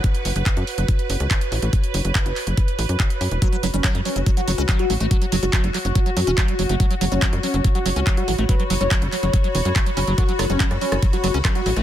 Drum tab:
HH |xxoxxxoxxxoxxxox|xxoxxxoxxxoxxxox|xxoxxxoxxxoxxxox|xxoxxxoxxxoxxxox|
CP |----x-------x---|----x-x-----x---|----x-------x---|----x-x-----x---|
SD |----------------|----------------|----------------|----------------|
BD |o---o---o---o---|o---o---o---o---|o---o---o---o---|o---o---o---o---|

HH |xxoxxxoxxxoxxxox|xxoxxxoxxxoxxxox|xxoxxxoxxxoxxxox|
CP |----x-------x---|----x-x-----x---|----x-------x---|
SD |----------------|----------------|r-r--r-r--r-r--r|
BD |o---o---o---o---|o---o---o---o---|o---o---o---o---|